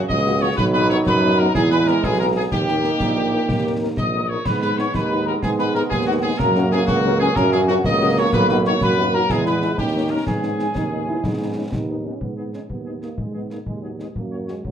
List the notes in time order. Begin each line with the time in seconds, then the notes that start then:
Already playing: C#3 F#3 C#4
0.08 C#2 D#5 D#6, concert bass drum, snare
0.26 A#3 C#4 F#4
0.41 A#3 C#4 F#4 C#5 C#6
0.56 B1 D#3 F#3 D#4 B4 B5, concert bass drum, snare, crash
0.73 F#3 B3 D#4 B4 B5, snare
0.90 F#3 B3 D#4 C#5 C#6, snare
1.06 F#2 B4 B5, concert bass drum, snare
1.23 F#3 B3 D#4
1.39 F#3 B3 D#4 A#4 A#5
1.54 E2 E3 G#3 E4 G#4 G#5, concert bass drum, snare
1.71 G#3 B3 E4 B4 B5, snare
1.87 G#3 B3 E4 A#4 A#5, snare
2.02 B1 B3 G#4 G#5, concert bass drum, snare
2.20 G#3 B3 E4 A#4 A#5
2.34 G#3 B3 E4 G#4 G#5
2.52 D#2 D#3 A#3 D#4 G4 G5, concert bass drum, snare, crash
2.68 A#3 D#4 A#4, snare
2.84 A#3 D#4 A#4, snare
3.00 A#1, concert bass drum, snare
3.16 A#3 D#4 A#4
3.33 A#3 D#4 A#4
3.49 D#2, concert bass drum, snare
3.65 A#3 D#4 A#4
3.81 A#3 D#4 A#4
3.97 A#1 D#5 D#6, concert bass drum, snare
4.14 A#3 D#4 A#4
4.29 A#3 D#4 A#4 C#5 C#6
4.45 G#2 D#3 G#3 B3 B4 B5, concert bass drum, snare, crash
4.61 B3 D#4 G#4 B4 B5, snare
4.78 B3 D#4 G#4 C#5 C#6, snare
4.94 D#2 D#4 B4 B5, concert bass drum, snare
5.11 B3 D#4 G#4
5.26 B3 D#4 G#4 A#4 A#5
5.42 G#2 B3 G#4 G#5, concert bass drum, snare
5.59 B3 D#4 G#4 B4 B5, snare
5.75 B3 D#4 G#4 A#4 A#5, snare
5.90 D#2 G#4 G#5, concert bass drum, snare
6.06 B3 D#4 F#4 G#4 F#5
6.23 B3 D#4 G#4 G#5
6.39 F#2 C#3 F#3 A#3 A#4 A#5, concert bass drum, snare, crash
6.55 C#4 F#4 A#4, snare
6.72 C#4 F#4 G#4 A#4 G#5, snare
6.87 C#2 F#4 F#5, concert bass drum, snare
7.04 C#4 F#4 A#4
7.19 C#4 F#4 G#4 A#4 G#5
7.36 F#2 C#4 A#4 A#5, concert bass drum, snare
7.52 C#4 F#4 G#4 A#4 G#5, snare
7.68 C#4 F#4 A#4 F#5, snare
7.84 C#2 A#3 D#5 D#6, concert bass drum, snare
8.02 C#4 F#4 A#4
8.17 C#4 F#4 A#4 C#5 C#6
8.33 B1 D#3 F#3 B4 B5, concert bass drum, snare, crash
8.49 B3 D#4 F#4 B4 B5, snare
8.65 B3 D#4 F#4 C#5 C#6, snare
8.81 F#2 B4 B5, concert bass drum, snare
8.98 B3 D#4 F#4
9.13 B3 D#4 F#4 A#4 A#5
9.29 E2 E3 G#3 B3 G#4 G#5, concert bass drum, snare
9.46 G#3 E4 G#4 B4 B5, snare
9.62 G#3 E4 G#4, snare
9.78 D#2 D#3 C#4 D#4 G4 G5, concert bass drum, snare
9.95 A#3 C#4 D#4
10.10 A#3 C#4 D#4 A#4 A#5
10.26 G#2 D#3 B3 G#4 G#5, concert bass drum, snare, crash
10.43 G#3 B3 D#4, snare
10.59 G#3 B3 D#4, snare
10.75 D#2 D#4, concert bass drum, snare
10.92 G#3 B3 D#4
11.08 G#3 B3 D#4 E4
11.23 G#2 B3 D#4, concert bass drum, snare
11.40 G#3 B3 D#4
11.56 G#3 B3 C#4 D#4
11.72 D#2 D#4, concert bass drum, snare
11.88 G#3 B3 D#4
12.05 G#3 B3 C#4 D#4
12.21 G#2 B3, concert bass drum
12.37 G#3 B3 D#4 G#4
12.54 G#3 B3 C#4 D#4 G#4, snare
12.70 D#2 B3, concert bass drum
12.86 G#3 B3 D#4 G#4
13.02 G#3 A#3 B3 D#4 G#4, snare
13.18 G#2 G#3, concert bass drum
13.34 G#3 B3 D#4 G#4
13.50 G#3 A#3 B3 D#4 G#4, snare
13.66 D#2 G#3, concert bass drum
13.83 F#3 G#3 B3 D#4 G#4
13.99 G#3 B3 D#4 G#4, snare
14.16 F#2 A#3, concert bass drum
14.30 A#3 C#4 F#4 C#5
14.47 G#3 A#3 C#4 F#4 C#5, snare
14.64 C#2 F#3, concert bass drum